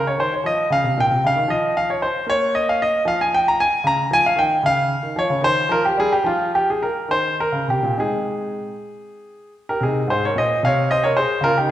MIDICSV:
0, 0, Header, 1, 2, 480
1, 0, Start_track
1, 0, Tempo, 523560
1, 1358, Time_signature, 6, 3, 24, 8
1, 3756, Tempo, 535714
1, 5676, Tempo, 569801
1, 6636, Tempo, 607287
1, 8556, Tempo, 537153
1, 10256, End_track
2, 0, Start_track
2, 0, Title_t, "Grand piano"
2, 0, Program_c, 0, 0
2, 67, Note_on_c, 0, 73, 85
2, 163, Note_on_c, 0, 51, 56
2, 171, Note_off_c, 0, 73, 0
2, 183, Note_on_c, 0, 72, 92
2, 289, Note_off_c, 0, 72, 0
2, 310, Note_on_c, 0, 73, 71
2, 333, Note_off_c, 0, 51, 0
2, 401, Note_on_c, 0, 53, 55
2, 413, Note_off_c, 0, 73, 0
2, 424, Note_on_c, 0, 75, 89
2, 574, Note_off_c, 0, 53, 0
2, 618, Note_off_c, 0, 75, 0
2, 644, Note_on_c, 0, 49, 68
2, 664, Note_on_c, 0, 77, 100
2, 757, Note_off_c, 0, 49, 0
2, 769, Note_on_c, 0, 48, 62
2, 880, Note_off_c, 0, 48, 0
2, 894, Note_off_c, 0, 77, 0
2, 894, Note_on_c, 0, 46, 61
2, 921, Note_on_c, 0, 79, 105
2, 1002, Note_off_c, 0, 46, 0
2, 1018, Note_on_c, 0, 48, 58
2, 1107, Note_off_c, 0, 79, 0
2, 1123, Note_off_c, 0, 48, 0
2, 1139, Note_on_c, 0, 49, 65
2, 1160, Note_on_c, 0, 77, 101
2, 1243, Note_off_c, 0, 49, 0
2, 1243, Note_on_c, 0, 51, 65
2, 1354, Note_off_c, 0, 51, 0
2, 1358, Note_on_c, 0, 53, 68
2, 1378, Note_off_c, 0, 77, 0
2, 1378, Note_on_c, 0, 75, 90
2, 1606, Note_off_c, 0, 75, 0
2, 1622, Note_on_c, 0, 77, 96
2, 1730, Note_off_c, 0, 77, 0
2, 1742, Note_on_c, 0, 73, 80
2, 1850, Note_off_c, 0, 73, 0
2, 1855, Note_on_c, 0, 72, 87
2, 1877, Note_off_c, 0, 53, 0
2, 2052, Note_off_c, 0, 72, 0
2, 2077, Note_on_c, 0, 58, 64
2, 2104, Note_on_c, 0, 73, 109
2, 2332, Note_off_c, 0, 73, 0
2, 2336, Note_on_c, 0, 75, 95
2, 2448, Note_off_c, 0, 75, 0
2, 2468, Note_on_c, 0, 77, 95
2, 2574, Note_off_c, 0, 77, 0
2, 2586, Note_on_c, 0, 75, 94
2, 2596, Note_off_c, 0, 58, 0
2, 2778, Note_off_c, 0, 75, 0
2, 2798, Note_on_c, 0, 53, 72
2, 2821, Note_on_c, 0, 77, 103
2, 2928, Note_off_c, 0, 77, 0
2, 2944, Note_on_c, 0, 80, 90
2, 3050, Note_off_c, 0, 80, 0
2, 3067, Note_on_c, 0, 79, 103
2, 3170, Note_off_c, 0, 79, 0
2, 3192, Note_on_c, 0, 82, 93
2, 3293, Note_off_c, 0, 82, 0
2, 3304, Note_on_c, 0, 80, 102
2, 3315, Note_off_c, 0, 53, 0
2, 3521, Note_on_c, 0, 49, 68
2, 3529, Note_off_c, 0, 80, 0
2, 3547, Note_on_c, 0, 82, 105
2, 3692, Note_off_c, 0, 49, 0
2, 3768, Note_on_c, 0, 53, 70
2, 3771, Note_off_c, 0, 82, 0
2, 3789, Note_on_c, 0, 80, 119
2, 3891, Note_off_c, 0, 80, 0
2, 3905, Note_on_c, 0, 77, 90
2, 3934, Note_off_c, 0, 53, 0
2, 3991, Note_on_c, 0, 51, 74
2, 4009, Note_off_c, 0, 77, 0
2, 4015, Note_on_c, 0, 79, 102
2, 4166, Note_off_c, 0, 51, 0
2, 4212, Note_off_c, 0, 79, 0
2, 4236, Note_on_c, 0, 49, 67
2, 4260, Note_on_c, 0, 77, 110
2, 4496, Note_off_c, 0, 49, 0
2, 4591, Note_on_c, 0, 51, 60
2, 4706, Note_off_c, 0, 51, 0
2, 4709, Note_on_c, 0, 53, 69
2, 4727, Note_off_c, 0, 77, 0
2, 4732, Note_on_c, 0, 73, 101
2, 4823, Note_off_c, 0, 53, 0
2, 4832, Note_on_c, 0, 49, 63
2, 4924, Note_off_c, 0, 73, 0
2, 4937, Note_on_c, 0, 51, 74
2, 4944, Note_off_c, 0, 49, 0
2, 4962, Note_on_c, 0, 72, 112
2, 5111, Note_off_c, 0, 51, 0
2, 5185, Note_on_c, 0, 53, 73
2, 5191, Note_off_c, 0, 72, 0
2, 5207, Note_on_c, 0, 70, 105
2, 5316, Note_off_c, 0, 70, 0
2, 5329, Note_on_c, 0, 67, 91
2, 5359, Note_off_c, 0, 53, 0
2, 5438, Note_on_c, 0, 55, 72
2, 5439, Note_off_c, 0, 67, 0
2, 5458, Note_on_c, 0, 68, 104
2, 5567, Note_off_c, 0, 68, 0
2, 5573, Note_on_c, 0, 67, 94
2, 5614, Note_off_c, 0, 55, 0
2, 5676, Note_on_c, 0, 53, 69
2, 5687, Note_off_c, 0, 67, 0
2, 5696, Note_on_c, 0, 65, 92
2, 5889, Note_off_c, 0, 65, 0
2, 5937, Note_on_c, 0, 67, 95
2, 6043, Note_off_c, 0, 67, 0
2, 6065, Note_on_c, 0, 68, 80
2, 6166, Note_off_c, 0, 68, 0
2, 6169, Note_on_c, 0, 70, 86
2, 6189, Note_off_c, 0, 53, 0
2, 6387, Note_on_c, 0, 51, 64
2, 6399, Note_off_c, 0, 70, 0
2, 6410, Note_on_c, 0, 72, 101
2, 6611, Note_off_c, 0, 72, 0
2, 6655, Note_off_c, 0, 51, 0
2, 6655, Note_on_c, 0, 70, 96
2, 6750, Note_on_c, 0, 49, 58
2, 6849, Note_off_c, 0, 70, 0
2, 6865, Note_off_c, 0, 49, 0
2, 6875, Note_on_c, 0, 48, 55
2, 6890, Note_on_c, 0, 67, 85
2, 6989, Note_off_c, 0, 48, 0
2, 6992, Note_on_c, 0, 46, 64
2, 7089, Note_off_c, 0, 67, 0
2, 7106, Note_on_c, 0, 60, 42
2, 7106, Note_on_c, 0, 63, 44
2, 7107, Note_on_c, 0, 56, 52
2, 7109, Note_off_c, 0, 46, 0
2, 7125, Note_on_c, 0, 68, 87
2, 7618, Note_off_c, 0, 56, 0
2, 7690, Note_off_c, 0, 60, 0
2, 7690, Note_off_c, 0, 63, 0
2, 8329, Note_off_c, 0, 68, 0
2, 8464, Note_on_c, 0, 70, 85
2, 8471, Note_on_c, 0, 67, 63
2, 8554, Note_on_c, 0, 48, 63
2, 8565, Note_off_c, 0, 67, 0
2, 8568, Note_off_c, 0, 70, 0
2, 8575, Note_on_c, 0, 68, 82
2, 8587, Note_on_c, 0, 63, 57
2, 8734, Note_off_c, 0, 48, 0
2, 8779, Note_off_c, 0, 68, 0
2, 8795, Note_on_c, 0, 44, 64
2, 8804, Note_off_c, 0, 63, 0
2, 8819, Note_on_c, 0, 72, 94
2, 8829, Note_on_c, 0, 68, 74
2, 8932, Note_off_c, 0, 68, 0
2, 8935, Note_off_c, 0, 72, 0
2, 8953, Note_on_c, 0, 73, 85
2, 8965, Note_on_c, 0, 70, 61
2, 8974, Note_off_c, 0, 44, 0
2, 9046, Note_on_c, 0, 46, 57
2, 9060, Note_off_c, 0, 70, 0
2, 9062, Note_off_c, 0, 73, 0
2, 9067, Note_on_c, 0, 75, 93
2, 9076, Note_on_c, 0, 72, 66
2, 9220, Note_off_c, 0, 46, 0
2, 9263, Note_off_c, 0, 75, 0
2, 9286, Note_off_c, 0, 72, 0
2, 9289, Note_on_c, 0, 48, 68
2, 9306, Note_on_c, 0, 77, 100
2, 9317, Note_on_c, 0, 73, 80
2, 9523, Note_off_c, 0, 73, 0
2, 9533, Note_off_c, 0, 77, 0
2, 9537, Note_on_c, 0, 75, 101
2, 9545, Note_on_c, 0, 72, 74
2, 9645, Note_off_c, 0, 72, 0
2, 9648, Note_off_c, 0, 75, 0
2, 9653, Note_on_c, 0, 73, 95
2, 9665, Note_on_c, 0, 70, 68
2, 9763, Note_off_c, 0, 70, 0
2, 9764, Note_off_c, 0, 73, 0
2, 9769, Note_on_c, 0, 72, 93
2, 9778, Note_on_c, 0, 68, 73
2, 9798, Note_off_c, 0, 48, 0
2, 9985, Note_on_c, 0, 49, 70
2, 9989, Note_off_c, 0, 68, 0
2, 10001, Note_off_c, 0, 72, 0
2, 10011, Note_on_c, 0, 70, 108
2, 10018, Note_on_c, 0, 65, 78
2, 10120, Note_off_c, 0, 65, 0
2, 10124, Note_off_c, 0, 70, 0
2, 10134, Note_on_c, 0, 67, 87
2, 10148, Note_on_c, 0, 63, 66
2, 10245, Note_off_c, 0, 63, 0
2, 10245, Note_off_c, 0, 67, 0
2, 10256, Note_off_c, 0, 49, 0
2, 10256, End_track
0, 0, End_of_file